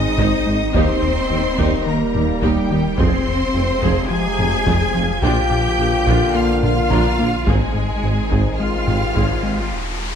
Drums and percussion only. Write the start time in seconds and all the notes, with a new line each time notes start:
0.18 taiko
0.74 taiko
1.59 taiko
2.15 taiko low-mid
2.42 taiko
2.98 taiko
3.83 taiko
4.39 taiko low-mid
4.67 taiko
5.22 taiko
6.07 taiko
6.63 taiko low-mid
6.91 taiko
7.47 taiko
8.32 taiko
8.88 taiko low-mid
9.15 taiko